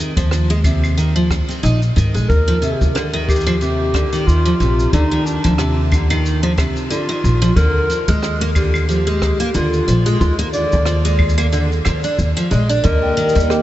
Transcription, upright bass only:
0.17 D#2
1.64 A#1
1.97 G#2
2.15 A#1
2.30 D#2
2.81 D#2
4.27 D#2
4.60 A#1
4.93 D#2
5.45 D#2
7.24 A#1
7.56 D#2
8.08 D#2
9.55 D#2
9.88 A#1
10.21 D#2
10.73 D#2
11.86 D#2
12.19 D#2
12.51 A#1
12.85 D#2
13.36 D#2

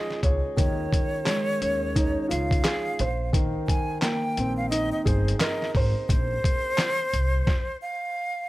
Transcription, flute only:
Already playing: D#5
0.57 C#5
2.31 F5
3.67 G#5
4.03 G5
4.57 F5
4.70 D#5
4.92 D#5
5.06 C5
5.40 D#5
6.09 C5
7.82 F5

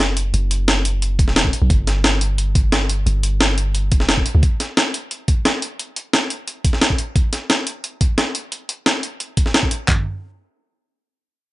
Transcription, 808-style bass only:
Already playing: F#1
0.34 F#1
1.19 E1
1.62 B1
1.70 G1
3.06 G1
3.92 F1
4.35 D2

